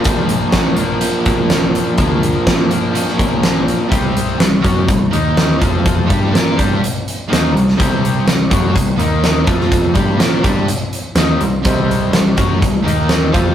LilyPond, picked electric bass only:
\new Staff \with { instrumentName = "Picked electric bass" } { \clef bass \time 4/4 \key c \minor \tempo 4 = 124 bes,,4 bes,,4. bes,,4. | d,4 bes,4. bes,,4. | c,4 c,8 fis,8 c,8 ees,4 f,8~ | f,8 g,8 bes,8 g,8 r4 ees,8 c,8 |
c,4 c,8 fis,8 c,8 ees,4 f,8~ | f,8 g,8 bes,8 g,8 r4 ees,8 c,8 | c,4 c,8 fis,8 c,8 ees,4 f,8 | }